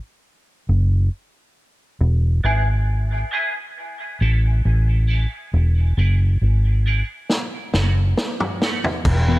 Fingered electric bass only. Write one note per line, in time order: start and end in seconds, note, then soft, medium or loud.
0.69 1.08 F#1 medium
2.01 2.40 E1 loud
2.44 3.22 G#1 medium
4.21 4.60 A1 medium
4.65 5.25 A1 medium
5.54 5.92 E1 medium
5.97 6.36 F#1 medium
6.42 7.01 G#1 medium
7.74 8.13 F#1 medium
9.06 9.39 E1 loud